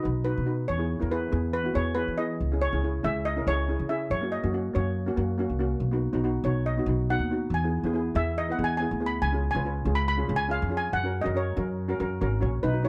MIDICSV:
0, 0, Header, 1, 4, 480
1, 0, Start_track
1, 0, Tempo, 426743
1, 766, Time_signature, 4, 2, 24, 8
1, 14494, End_track
2, 0, Start_track
2, 0, Title_t, "Steel pan"
2, 0, Program_c, 0, 114
2, 0, Note_on_c, 0, 75, 92
2, 276, Note_on_c, 0, 71, 81
2, 300, Note_off_c, 0, 75, 0
2, 504, Note_off_c, 0, 71, 0
2, 766, Note_on_c, 0, 73, 90
2, 1254, Note_on_c, 0, 71, 85
2, 1262, Note_off_c, 0, 73, 0
2, 1475, Note_off_c, 0, 71, 0
2, 1727, Note_on_c, 0, 71, 100
2, 1952, Note_off_c, 0, 71, 0
2, 1972, Note_on_c, 0, 73, 100
2, 2080, Note_off_c, 0, 73, 0
2, 2189, Note_on_c, 0, 71, 95
2, 2302, Note_off_c, 0, 71, 0
2, 2448, Note_on_c, 0, 75, 93
2, 2942, Note_on_c, 0, 73, 95
2, 2946, Note_off_c, 0, 75, 0
2, 3425, Note_on_c, 0, 76, 92
2, 3433, Note_off_c, 0, 73, 0
2, 3643, Note_off_c, 0, 76, 0
2, 3659, Note_on_c, 0, 75, 99
2, 3904, Note_off_c, 0, 75, 0
2, 3910, Note_on_c, 0, 73, 99
2, 4350, Note_off_c, 0, 73, 0
2, 4379, Note_on_c, 0, 76, 81
2, 4601, Note_off_c, 0, 76, 0
2, 4623, Note_on_c, 0, 73, 97
2, 4857, Note_on_c, 0, 75, 82
2, 4867, Note_off_c, 0, 73, 0
2, 5342, Note_on_c, 0, 73, 78
2, 5352, Note_off_c, 0, 75, 0
2, 5563, Note_off_c, 0, 73, 0
2, 7252, Note_on_c, 0, 73, 80
2, 7478, Note_off_c, 0, 73, 0
2, 7492, Note_on_c, 0, 75, 85
2, 7989, Note_off_c, 0, 75, 0
2, 7990, Note_on_c, 0, 78, 100
2, 8477, Note_off_c, 0, 78, 0
2, 8483, Note_on_c, 0, 80, 84
2, 8694, Note_off_c, 0, 80, 0
2, 9178, Note_on_c, 0, 76, 100
2, 9286, Note_off_c, 0, 76, 0
2, 9424, Note_on_c, 0, 75, 97
2, 9579, Note_on_c, 0, 78, 70
2, 9585, Note_off_c, 0, 75, 0
2, 9719, Note_on_c, 0, 80, 95
2, 9726, Note_off_c, 0, 78, 0
2, 9795, Note_off_c, 0, 80, 0
2, 9868, Note_on_c, 0, 80, 88
2, 10195, Note_on_c, 0, 83, 95
2, 10211, Note_off_c, 0, 80, 0
2, 10353, Note_off_c, 0, 83, 0
2, 10369, Note_on_c, 0, 80, 102
2, 10681, Note_off_c, 0, 80, 0
2, 10694, Note_on_c, 0, 80, 100
2, 11187, Note_off_c, 0, 80, 0
2, 11194, Note_on_c, 0, 83, 108
2, 11327, Note_off_c, 0, 83, 0
2, 11340, Note_on_c, 0, 83, 104
2, 11633, Note_off_c, 0, 83, 0
2, 11656, Note_on_c, 0, 80, 112
2, 11818, Note_off_c, 0, 80, 0
2, 11825, Note_on_c, 0, 77, 94
2, 12116, Note_on_c, 0, 80, 88
2, 12146, Note_off_c, 0, 77, 0
2, 12191, Note_off_c, 0, 80, 0
2, 12298, Note_on_c, 0, 78, 105
2, 12615, Note_on_c, 0, 75, 83
2, 12622, Note_off_c, 0, 78, 0
2, 12685, Note_off_c, 0, 75, 0
2, 12786, Note_on_c, 0, 73, 78
2, 13929, Note_off_c, 0, 73, 0
2, 14206, Note_on_c, 0, 71, 87
2, 14215, Note_on_c, 0, 63, 68
2, 14433, Note_off_c, 0, 63, 0
2, 14452, Note_off_c, 0, 71, 0
2, 14452, Note_on_c, 0, 73, 85
2, 14459, Note_on_c, 0, 64, 64
2, 14494, Note_off_c, 0, 64, 0
2, 14494, Note_off_c, 0, 73, 0
2, 14494, End_track
3, 0, Start_track
3, 0, Title_t, "Steel pan"
3, 0, Program_c, 1, 114
3, 27, Note_on_c, 1, 63, 64
3, 32, Note_on_c, 1, 66, 61
3, 41, Note_on_c, 1, 71, 72
3, 186, Note_off_c, 1, 63, 0
3, 189, Note_off_c, 1, 66, 0
3, 193, Note_off_c, 1, 71, 0
3, 279, Note_on_c, 1, 63, 66
3, 283, Note_on_c, 1, 66, 62
3, 291, Note_on_c, 1, 71, 78
3, 432, Note_off_c, 1, 63, 0
3, 435, Note_off_c, 1, 66, 0
3, 438, Note_off_c, 1, 71, 0
3, 518, Note_on_c, 1, 63, 65
3, 520, Note_on_c, 1, 66, 62
3, 531, Note_on_c, 1, 71, 69
3, 740, Note_off_c, 1, 63, 0
3, 741, Note_off_c, 1, 66, 0
3, 746, Note_off_c, 1, 71, 0
3, 874, Note_on_c, 1, 59, 59
3, 888, Note_on_c, 1, 64, 63
3, 892, Note_on_c, 1, 68, 72
3, 1023, Note_off_c, 1, 59, 0
3, 1030, Note_off_c, 1, 64, 0
3, 1032, Note_off_c, 1, 68, 0
3, 1117, Note_on_c, 1, 59, 68
3, 1128, Note_on_c, 1, 64, 68
3, 1138, Note_on_c, 1, 70, 78
3, 1194, Note_off_c, 1, 59, 0
3, 1199, Note_off_c, 1, 64, 0
3, 1204, Note_off_c, 1, 70, 0
3, 1239, Note_on_c, 1, 59, 63
3, 1248, Note_on_c, 1, 64, 71
3, 1258, Note_on_c, 1, 68, 76
3, 1394, Note_off_c, 1, 59, 0
3, 1398, Note_off_c, 1, 64, 0
3, 1404, Note_off_c, 1, 68, 0
3, 1466, Note_on_c, 1, 59, 68
3, 1483, Note_on_c, 1, 64, 60
3, 1486, Note_on_c, 1, 68, 78
3, 1695, Note_off_c, 1, 59, 0
3, 1704, Note_off_c, 1, 64, 0
3, 1706, Note_off_c, 1, 68, 0
3, 1842, Note_on_c, 1, 59, 65
3, 1857, Note_on_c, 1, 64, 61
3, 1867, Note_on_c, 1, 66, 82
3, 1918, Note_off_c, 1, 59, 0
3, 1925, Note_off_c, 1, 64, 0
3, 1930, Note_off_c, 1, 66, 0
3, 1952, Note_on_c, 1, 59, 71
3, 1958, Note_on_c, 1, 64, 61
3, 1964, Note_on_c, 1, 68, 74
3, 2111, Note_off_c, 1, 59, 0
3, 2115, Note_off_c, 1, 64, 0
3, 2118, Note_off_c, 1, 68, 0
3, 2196, Note_on_c, 1, 59, 74
3, 2207, Note_on_c, 1, 64, 60
3, 2212, Note_on_c, 1, 68, 75
3, 2354, Note_off_c, 1, 59, 0
3, 2360, Note_off_c, 1, 64, 0
3, 2362, Note_off_c, 1, 68, 0
3, 2445, Note_on_c, 1, 59, 68
3, 2458, Note_on_c, 1, 64, 62
3, 2466, Note_on_c, 1, 68, 74
3, 2667, Note_off_c, 1, 59, 0
3, 2673, Note_off_c, 1, 64, 0
3, 2677, Note_off_c, 1, 68, 0
3, 2832, Note_on_c, 1, 61, 64
3, 2837, Note_on_c, 1, 64, 52
3, 2846, Note_on_c, 1, 68, 77
3, 2964, Note_off_c, 1, 61, 0
3, 2967, Note_off_c, 1, 64, 0
3, 2971, Note_off_c, 1, 68, 0
3, 3062, Note_on_c, 1, 61, 73
3, 3075, Note_on_c, 1, 64, 68
3, 3083, Note_on_c, 1, 68, 80
3, 3129, Note_off_c, 1, 61, 0
3, 3135, Note_off_c, 1, 64, 0
3, 3139, Note_off_c, 1, 68, 0
3, 3178, Note_on_c, 1, 61, 62
3, 3192, Note_on_c, 1, 64, 62
3, 3202, Note_on_c, 1, 68, 78
3, 3326, Note_off_c, 1, 61, 0
3, 3333, Note_off_c, 1, 64, 0
3, 3338, Note_off_c, 1, 68, 0
3, 3410, Note_on_c, 1, 61, 69
3, 3422, Note_on_c, 1, 64, 60
3, 3432, Note_on_c, 1, 68, 81
3, 3630, Note_off_c, 1, 61, 0
3, 3636, Note_off_c, 1, 64, 0
3, 3641, Note_off_c, 1, 68, 0
3, 3784, Note_on_c, 1, 61, 76
3, 3791, Note_on_c, 1, 64, 65
3, 3802, Note_on_c, 1, 70, 79
3, 3851, Note_off_c, 1, 61, 0
3, 3854, Note_off_c, 1, 64, 0
3, 3860, Note_off_c, 1, 70, 0
3, 3898, Note_on_c, 1, 61, 64
3, 3913, Note_on_c, 1, 64, 65
3, 3921, Note_on_c, 1, 68, 72
3, 4047, Note_off_c, 1, 61, 0
3, 4054, Note_off_c, 1, 64, 0
3, 4058, Note_off_c, 1, 68, 0
3, 4139, Note_on_c, 1, 61, 69
3, 4152, Note_on_c, 1, 64, 65
3, 4162, Note_on_c, 1, 68, 79
3, 4287, Note_off_c, 1, 61, 0
3, 4294, Note_off_c, 1, 64, 0
3, 4299, Note_off_c, 1, 68, 0
3, 4381, Note_on_c, 1, 61, 67
3, 4391, Note_on_c, 1, 64, 67
3, 4395, Note_on_c, 1, 68, 75
3, 4596, Note_off_c, 1, 61, 0
3, 4601, Note_off_c, 1, 64, 0
3, 4603, Note_off_c, 1, 68, 0
3, 4738, Note_on_c, 1, 58, 69
3, 4751, Note_on_c, 1, 61, 59
3, 4764, Note_on_c, 1, 66, 68
3, 4879, Note_off_c, 1, 58, 0
3, 4886, Note_off_c, 1, 61, 0
3, 4892, Note_off_c, 1, 66, 0
3, 4983, Note_on_c, 1, 58, 77
3, 4992, Note_on_c, 1, 61, 61
3, 5001, Note_on_c, 1, 66, 85
3, 5051, Note_off_c, 1, 58, 0
3, 5056, Note_off_c, 1, 61, 0
3, 5060, Note_off_c, 1, 66, 0
3, 5096, Note_on_c, 1, 58, 64
3, 5104, Note_on_c, 1, 61, 64
3, 5109, Note_on_c, 1, 66, 83
3, 5247, Note_off_c, 1, 58, 0
3, 5251, Note_off_c, 1, 61, 0
3, 5253, Note_off_c, 1, 66, 0
3, 5327, Note_on_c, 1, 58, 74
3, 5338, Note_on_c, 1, 61, 68
3, 5348, Note_on_c, 1, 66, 82
3, 5550, Note_off_c, 1, 58, 0
3, 5555, Note_off_c, 1, 61, 0
3, 5560, Note_off_c, 1, 66, 0
3, 5695, Note_on_c, 1, 58, 72
3, 5703, Note_on_c, 1, 61, 80
3, 5714, Note_on_c, 1, 66, 96
3, 5767, Note_off_c, 1, 58, 0
3, 5771, Note_off_c, 1, 61, 0
3, 5777, Note_off_c, 1, 66, 0
3, 5808, Note_on_c, 1, 58, 84
3, 5816, Note_on_c, 1, 61, 68
3, 5827, Note_on_c, 1, 66, 85
3, 5963, Note_off_c, 1, 58, 0
3, 5967, Note_off_c, 1, 61, 0
3, 5972, Note_off_c, 1, 66, 0
3, 6050, Note_on_c, 1, 58, 88
3, 6063, Note_on_c, 1, 61, 81
3, 6073, Note_on_c, 1, 66, 93
3, 6204, Note_off_c, 1, 58, 0
3, 6211, Note_off_c, 1, 61, 0
3, 6215, Note_off_c, 1, 66, 0
3, 6287, Note_on_c, 1, 58, 84
3, 6295, Note_on_c, 1, 61, 71
3, 6303, Note_on_c, 1, 66, 89
3, 6510, Note_off_c, 1, 58, 0
3, 6514, Note_off_c, 1, 61, 0
3, 6518, Note_off_c, 1, 66, 0
3, 6652, Note_on_c, 1, 59, 79
3, 6666, Note_on_c, 1, 63, 68
3, 6672, Note_on_c, 1, 66, 86
3, 6797, Note_off_c, 1, 59, 0
3, 6804, Note_off_c, 1, 63, 0
3, 6807, Note_off_c, 1, 66, 0
3, 6894, Note_on_c, 1, 59, 92
3, 6904, Note_on_c, 1, 63, 83
3, 6914, Note_on_c, 1, 66, 90
3, 6967, Note_off_c, 1, 59, 0
3, 6972, Note_off_c, 1, 63, 0
3, 6977, Note_off_c, 1, 66, 0
3, 7014, Note_on_c, 1, 59, 77
3, 7021, Note_on_c, 1, 63, 78
3, 7028, Note_on_c, 1, 66, 94
3, 7166, Note_off_c, 1, 59, 0
3, 7169, Note_off_c, 1, 63, 0
3, 7173, Note_off_c, 1, 66, 0
3, 7242, Note_on_c, 1, 59, 71
3, 7258, Note_on_c, 1, 63, 61
3, 7266, Note_on_c, 1, 66, 81
3, 7467, Note_off_c, 1, 59, 0
3, 7476, Note_off_c, 1, 63, 0
3, 7479, Note_off_c, 1, 66, 0
3, 7620, Note_on_c, 1, 59, 77
3, 7634, Note_on_c, 1, 63, 61
3, 7639, Note_on_c, 1, 66, 80
3, 7690, Note_off_c, 1, 59, 0
3, 7697, Note_off_c, 1, 63, 0
3, 7699, Note_off_c, 1, 66, 0
3, 7730, Note_on_c, 1, 59, 64
3, 7741, Note_on_c, 1, 63, 59
3, 7752, Note_on_c, 1, 66, 79
3, 7884, Note_off_c, 1, 59, 0
3, 7889, Note_off_c, 1, 63, 0
3, 7895, Note_off_c, 1, 66, 0
3, 7985, Note_on_c, 1, 59, 73
3, 7989, Note_on_c, 1, 63, 65
3, 8000, Note_on_c, 1, 66, 76
3, 8131, Note_off_c, 1, 59, 0
3, 8133, Note_off_c, 1, 63, 0
3, 8139, Note_off_c, 1, 66, 0
3, 8216, Note_on_c, 1, 59, 66
3, 8226, Note_on_c, 1, 63, 64
3, 8241, Note_on_c, 1, 66, 77
3, 8434, Note_off_c, 1, 59, 0
3, 8439, Note_off_c, 1, 63, 0
3, 8447, Note_off_c, 1, 66, 0
3, 8590, Note_on_c, 1, 59, 74
3, 8598, Note_on_c, 1, 64, 60
3, 8605, Note_on_c, 1, 68, 71
3, 8725, Note_off_c, 1, 59, 0
3, 8729, Note_off_c, 1, 64, 0
3, 8733, Note_off_c, 1, 68, 0
3, 8824, Note_on_c, 1, 59, 88
3, 8830, Note_on_c, 1, 64, 78
3, 8847, Note_on_c, 1, 68, 96
3, 8892, Note_off_c, 1, 59, 0
3, 8895, Note_off_c, 1, 64, 0
3, 8903, Note_off_c, 1, 68, 0
3, 8923, Note_on_c, 1, 59, 83
3, 8933, Note_on_c, 1, 64, 78
3, 8946, Note_on_c, 1, 68, 99
3, 9080, Note_off_c, 1, 59, 0
3, 9085, Note_off_c, 1, 64, 0
3, 9091, Note_off_c, 1, 68, 0
3, 9161, Note_on_c, 1, 59, 70
3, 9179, Note_on_c, 1, 64, 69
3, 9184, Note_on_c, 1, 68, 81
3, 9386, Note_off_c, 1, 59, 0
3, 9395, Note_off_c, 1, 64, 0
3, 9397, Note_off_c, 1, 68, 0
3, 9546, Note_on_c, 1, 59, 67
3, 9555, Note_on_c, 1, 64, 65
3, 9564, Note_on_c, 1, 71, 77
3, 9612, Note_off_c, 1, 59, 0
3, 9617, Note_off_c, 1, 64, 0
3, 9621, Note_off_c, 1, 71, 0
3, 9644, Note_on_c, 1, 59, 60
3, 9655, Note_on_c, 1, 64, 55
3, 9668, Note_on_c, 1, 68, 73
3, 9799, Note_off_c, 1, 59, 0
3, 9805, Note_off_c, 1, 64, 0
3, 9812, Note_off_c, 1, 68, 0
3, 9898, Note_on_c, 1, 59, 78
3, 9916, Note_on_c, 1, 64, 64
3, 9923, Note_on_c, 1, 68, 82
3, 10046, Note_off_c, 1, 59, 0
3, 10055, Note_off_c, 1, 64, 0
3, 10059, Note_off_c, 1, 68, 0
3, 10126, Note_on_c, 1, 59, 73
3, 10131, Note_on_c, 1, 64, 56
3, 10140, Note_on_c, 1, 68, 77
3, 10347, Note_off_c, 1, 59, 0
3, 10350, Note_off_c, 1, 64, 0
3, 10354, Note_off_c, 1, 68, 0
3, 10488, Note_on_c, 1, 61, 68
3, 10505, Note_on_c, 1, 65, 60
3, 10508, Note_on_c, 1, 68, 79
3, 10632, Note_off_c, 1, 61, 0
3, 10641, Note_off_c, 1, 65, 0
3, 10642, Note_off_c, 1, 68, 0
3, 10735, Note_on_c, 1, 61, 72
3, 10750, Note_on_c, 1, 65, 70
3, 10756, Note_on_c, 1, 71, 80
3, 10805, Note_off_c, 1, 61, 0
3, 10813, Note_off_c, 1, 65, 0
3, 10816, Note_off_c, 1, 71, 0
3, 10852, Note_on_c, 1, 61, 69
3, 10857, Note_on_c, 1, 65, 65
3, 10869, Note_on_c, 1, 71, 79
3, 11002, Note_off_c, 1, 61, 0
3, 11005, Note_off_c, 1, 65, 0
3, 11011, Note_off_c, 1, 71, 0
3, 11080, Note_on_c, 1, 61, 70
3, 11095, Note_on_c, 1, 65, 67
3, 11099, Note_on_c, 1, 68, 86
3, 11303, Note_off_c, 1, 61, 0
3, 11311, Note_off_c, 1, 65, 0
3, 11313, Note_off_c, 1, 68, 0
3, 11442, Note_on_c, 1, 61, 76
3, 11448, Note_on_c, 1, 65, 68
3, 11458, Note_on_c, 1, 68, 77
3, 11518, Note_off_c, 1, 61, 0
3, 11521, Note_off_c, 1, 65, 0
3, 11526, Note_off_c, 1, 68, 0
3, 11561, Note_on_c, 1, 61, 62
3, 11563, Note_on_c, 1, 65, 66
3, 11572, Note_on_c, 1, 68, 69
3, 11716, Note_off_c, 1, 61, 0
3, 11717, Note_off_c, 1, 65, 0
3, 11721, Note_off_c, 1, 68, 0
3, 11790, Note_on_c, 1, 61, 78
3, 11803, Note_on_c, 1, 65, 73
3, 11810, Note_on_c, 1, 68, 84
3, 11950, Note_off_c, 1, 61, 0
3, 11956, Note_off_c, 1, 65, 0
3, 11960, Note_off_c, 1, 68, 0
3, 12030, Note_on_c, 1, 61, 78
3, 12044, Note_on_c, 1, 65, 65
3, 12052, Note_on_c, 1, 68, 74
3, 12257, Note_off_c, 1, 61, 0
3, 12264, Note_off_c, 1, 65, 0
3, 12268, Note_off_c, 1, 68, 0
3, 12413, Note_on_c, 1, 61, 67
3, 12425, Note_on_c, 1, 66, 65
3, 12431, Note_on_c, 1, 70, 80
3, 12552, Note_off_c, 1, 61, 0
3, 12558, Note_off_c, 1, 66, 0
3, 12561, Note_off_c, 1, 70, 0
3, 12638, Note_on_c, 1, 61, 78
3, 12648, Note_on_c, 1, 66, 65
3, 12659, Note_on_c, 1, 70, 76
3, 12714, Note_off_c, 1, 61, 0
3, 12719, Note_off_c, 1, 66, 0
3, 12725, Note_off_c, 1, 70, 0
3, 12759, Note_on_c, 1, 61, 70
3, 12768, Note_on_c, 1, 66, 66
3, 12779, Note_on_c, 1, 70, 81
3, 12913, Note_off_c, 1, 61, 0
3, 12918, Note_off_c, 1, 66, 0
3, 12923, Note_off_c, 1, 70, 0
3, 13009, Note_on_c, 1, 61, 73
3, 13018, Note_on_c, 1, 66, 65
3, 13024, Note_on_c, 1, 70, 84
3, 13225, Note_off_c, 1, 61, 0
3, 13229, Note_off_c, 1, 66, 0
3, 13232, Note_off_c, 1, 70, 0
3, 13368, Note_on_c, 1, 61, 86
3, 13373, Note_on_c, 1, 66, 88
3, 13385, Note_on_c, 1, 70, 96
3, 13438, Note_off_c, 1, 61, 0
3, 13441, Note_off_c, 1, 66, 0
3, 13447, Note_off_c, 1, 70, 0
3, 13494, Note_on_c, 1, 61, 77
3, 13498, Note_on_c, 1, 66, 70
3, 13507, Note_on_c, 1, 70, 102
3, 13640, Note_off_c, 1, 61, 0
3, 13642, Note_off_c, 1, 66, 0
3, 13646, Note_off_c, 1, 70, 0
3, 13732, Note_on_c, 1, 61, 85
3, 13738, Note_on_c, 1, 66, 78
3, 13745, Note_on_c, 1, 70, 109
3, 13878, Note_off_c, 1, 61, 0
3, 13881, Note_off_c, 1, 66, 0
3, 13885, Note_off_c, 1, 70, 0
3, 13954, Note_on_c, 1, 61, 80
3, 13962, Note_on_c, 1, 66, 77
3, 13973, Note_on_c, 1, 73, 98
3, 14177, Note_off_c, 1, 61, 0
3, 14181, Note_off_c, 1, 66, 0
3, 14186, Note_off_c, 1, 73, 0
3, 14317, Note_on_c, 1, 63, 66
3, 14326, Note_on_c, 1, 66, 56
3, 14336, Note_on_c, 1, 71, 76
3, 14392, Note_off_c, 1, 63, 0
3, 14396, Note_off_c, 1, 66, 0
3, 14401, Note_off_c, 1, 71, 0
3, 14428, Note_on_c, 1, 63, 70
3, 14440, Note_on_c, 1, 66, 61
3, 14446, Note_on_c, 1, 71, 80
3, 14494, Note_off_c, 1, 63, 0
3, 14494, Note_off_c, 1, 66, 0
3, 14494, Note_off_c, 1, 71, 0
3, 14494, End_track
4, 0, Start_track
4, 0, Title_t, "Upright bass"
4, 0, Program_c, 2, 32
4, 56, Note_on_c, 2, 35, 86
4, 366, Note_off_c, 2, 35, 0
4, 422, Note_on_c, 2, 47, 77
4, 720, Note_off_c, 2, 47, 0
4, 777, Note_on_c, 2, 40, 83
4, 1088, Note_off_c, 2, 40, 0
4, 1147, Note_on_c, 2, 40, 84
4, 1444, Note_off_c, 2, 40, 0
4, 1489, Note_on_c, 2, 40, 98
4, 1901, Note_off_c, 2, 40, 0
4, 1970, Note_on_c, 2, 40, 90
4, 2286, Note_off_c, 2, 40, 0
4, 2338, Note_on_c, 2, 52, 70
4, 2641, Note_off_c, 2, 52, 0
4, 2705, Note_on_c, 2, 37, 79
4, 3015, Note_off_c, 2, 37, 0
4, 3066, Note_on_c, 2, 37, 79
4, 3366, Note_off_c, 2, 37, 0
4, 3420, Note_on_c, 2, 37, 89
4, 3829, Note_off_c, 2, 37, 0
4, 3899, Note_on_c, 2, 37, 84
4, 4212, Note_off_c, 2, 37, 0
4, 4267, Note_on_c, 2, 49, 76
4, 4568, Note_off_c, 2, 49, 0
4, 4616, Note_on_c, 2, 42, 83
4, 4931, Note_off_c, 2, 42, 0
4, 4988, Note_on_c, 2, 42, 86
4, 5288, Note_off_c, 2, 42, 0
4, 5349, Note_on_c, 2, 42, 101
4, 5755, Note_off_c, 2, 42, 0
4, 5817, Note_on_c, 2, 42, 90
4, 6132, Note_off_c, 2, 42, 0
4, 6181, Note_on_c, 2, 36, 69
4, 6484, Note_off_c, 2, 36, 0
4, 6524, Note_on_c, 2, 35, 84
4, 6845, Note_off_c, 2, 35, 0
4, 6894, Note_on_c, 2, 35, 77
4, 7201, Note_off_c, 2, 35, 0
4, 7239, Note_on_c, 2, 35, 92
4, 7658, Note_off_c, 2, 35, 0
4, 7719, Note_on_c, 2, 35, 92
4, 8042, Note_off_c, 2, 35, 0
4, 8085, Note_on_c, 2, 39, 77
4, 8395, Note_off_c, 2, 39, 0
4, 8436, Note_on_c, 2, 40, 85
4, 8760, Note_off_c, 2, 40, 0
4, 8813, Note_on_c, 2, 40, 80
4, 9119, Note_off_c, 2, 40, 0
4, 9169, Note_on_c, 2, 40, 100
4, 9582, Note_off_c, 2, 40, 0
4, 9658, Note_on_c, 2, 40, 86
4, 9971, Note_off_c, 2, 40, 0
4, 10023, Note_on_c, 2, 38, 85
4, 10324, Note_off_c, 2, 38, 0
4, 10368, Note_on_c, 2, 37, 93
4, 10685, Note_off_c, 2, 37, 0
4, 10740, Note_on_c, 2, 37, 85
4, 11041, Note_off_c, 2, 37, 0
4, 11084, Note_on_c, 2, 37, 97
4, 11497, Note_off_c, 2, 37, 0
4, 11576, Note_on_c, 2, 37, 96
4, 11888, Note_off_c, 2, 37, 0
4, 11945, Note_on_c, 2, 41, 85
4, 12243, Note_off_c, 2, 41, 0
4, 12292, Note_on_c, 2, 42, 90
4, 12604, Note_off_c, 2, 42, 0
4, 12661, Note_on_c, 2, 42, 88
4, 12959, Note_off_c, 2, 42, 0
4, 13010, Note_on_c, 2, 42, 98
4, 13419, Note_off_c, 2, 42, 0
4, 13496, Note_on_c, 2, 42, 94
4, 13697, Note_off_c, 2, 42, 0
4, 13738, Note_on_c, 2, 32, 95
4, 13948, Note_off_c, 2, 32, 0
4, 13976, Note_on_c, 2, 34, 89
4, 14186, Note_off_c, 2, 34, 0
4, 14214, Note_on_c, 2, 35, 86
4, 14494, Note_off_c, 2, 35, 0
4, 14494, End_track
0, 0, End_of_file